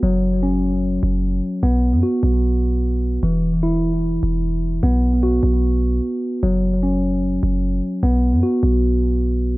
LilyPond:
<<
  \new Staff \with { instrumentName = "Tine electric piano" } { \time 4/4 \key fis \phrygian \tempo 4 = 150 fis4 cis'2. | b4 fis'2. | e4 e'2. | b4 fis'2. |
fis4 cis'2. | b4 fis'2. | }
  \new Staff \with { instrumentName = "808-style bass" } { \clef bass \time 4/4 \key fis \phrygian fis,,2~ fis,,8 fis,,4 r8 | b,,8. fis,16 r8 b,,2~ b,,8 | e,,2~ e,,8 e,,4. | b,,4. b,,4. r4 |
fis,,2~ fis,,8 fis,,4 r8 | b,,8. fis,16 r8 b,,2~ b,,8 | }
>>